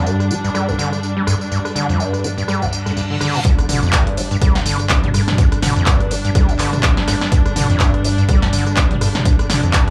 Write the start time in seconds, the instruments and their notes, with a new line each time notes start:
Already playing: string section G2 G3 D4
0.06 acid bass G2, tambourine
0.20 cross-stick, tambourine
0.30 acid bass A#3, tambourine
0.44 acid bass G2, tambourine
0.54 acid bass G3, cross-stick, tambourine
0.68 acid bass G1, tambourine
0.79 acid bass D3, tambourine
0.92 cross-stick, tambourine
1.03 tambourine
1.17 acid bass G3
1.27 acid bass G2, cross-stick, tambourine
1.41 tambourine
1.51 acid bass G2, tambourine
1.65 cross-stick, tambourine
1.75 acid bass D3, tambourine
1.89 acid bass F2, tambourine
2.00 acid bass G2, tambourine
2.13 cross-stick, tambourine
2.24 acid bass A#3, tambourine
2.38 acid bass G2, tambourine
2.48 acid bass G3, cross-stick, tambourine, reverse cymbal
2.62 acid bass G1, tambourine
2.73 tambourine
2.86 acid bass G2, cross-stick, tambourine
2.96 acid bass G2, tambourine
3.10 acid bass D3
3.21 acid bass D3, cross-stick, tambourine
3.34 acid bass A#2, tambourine
3.45 acid bass G2, string section G2 G3 D4, kick, closed hi-hat, tambourine, impact
3.59 cross-stick, closed hi-hat, tambourine
3.69 acid bass D3, open hi-hat, mid tom, tambourine
3.83 acid bass F2, closed hi-hat, tambourine
3.93 acid bass G2, kick, clap, closed hi-hat, tambourine
4.07 cross-stick, closed hi-hat
4.17 acid bass A#3, open hi-hat, tambourine
4.31 acid bass G2, closed hi-hat, tambourine
4.42 acid bass G3, kick, cross-stick, closed hi-hat, tambourine
4.55 acid bass G1, snare, closed hi-hat, tambourine
4.66 acid bass D3, open hi-hat, tambourine
4.79 cross-stick, closed hi-hat, tambourine
4.89 kick, clap, closed hi-hat, tambourine
5.04 acid bass G3, closed hi-hat, mid tom
5.14 acid bass G2, cross-stick, open hi-hat, tambourine
5.28 snare, closed hi-hat, mid tom, tambourine
5.38 acid bass G2, kick, closed hi-hat, tambourine
5.52 cross-stick, closed hi-hat, tambourine
5.62 acid bass D3, snare, open hi-hat, mid tom, tambourine
5.76 acid bass F2, closed hi-hat, tambourine
5.86 acid bass G2, kick, clap, closed hi-hat, tambourine
6.00 cross-stick, closed hi-hat
6.11 acid bass A#3, open hi-hat, tambourine
6.25 acid bass G2, closed hi-hat, tambourine
6.35 acid bass G3, kick, cross-stick, closed hi-hat, tambourine
6.49 acid bass G1, closed hi-hat, tambourine
6.59 acid bass D3, clap, open hi-hat, tambourine
6.73 cross-stick, closed hi-hat, mid tom, tambourine
6.83 kick, clap, closed hi-hat, tambourine
6.97 acid bass G3, snare, closed hi-hat
7.08 acid bass G2, cross-stick, snare, open hi-hat, tambourine
7.21 snare, closed hi-hat, tambourine
7.32 acid bass G2, kick, closed hi-hat, tambourine
7.46 cross-stick, closed hi-hat, tambourine
7.56 acid bass D3, open hi-hat, mid tom, tambourine
7.70 acid bass F2, closed hi-hat, tambourine
7.80 acid bass G2, kick, clap, closed hi-hat, tambourine
7.94 cross-stick, closed hi-hat
8.04 acid bass A#3, open hi-hat, tambourine
8.18 acid bass G2, closed hi-hat, tambourine
8.29 acid bass G3, kick, cross-stick, closed hi-hat, tambourine
8.42 acid bass G1, snare, closed hi-hat, tambourine
8.53 acid bass D3, open hi-hat, tambourine
8.67 cross-stick, closed hi-hat, tambourine
8.76 kick, clap, closed hi-hat, tambourine
8.91 acid bass G3, closed hi-hat, mid tom
9.01 acid bass G2, cross-stick, open hi-hat, tambourine
9.15 snare, closed hi-hat, mid tom, tambourine
9.25 acid bass G2, kick, closed hi-hat, tambourine
9.39 cross-stick, closed hi-hat, tambourine
9.50 acid bass D3, snare, open hi-hat, mid tom, tambourine
9.63 acid bass F2, closed hi-hat, tambourine
9.73 acid bass G2, kick, clap, closed hi-hat, tambourine